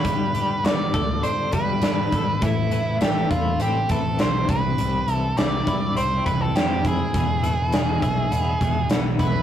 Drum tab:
HH |xxxxxxxx|xxxxxxxx|xxxxxxxx|xxxxxxxx|
SD |--o---o-|--o---o-|--o---o-|--o---o-|
BD |o--o-o-o|o--o-o-o|---o-o-o|o--o-o-o|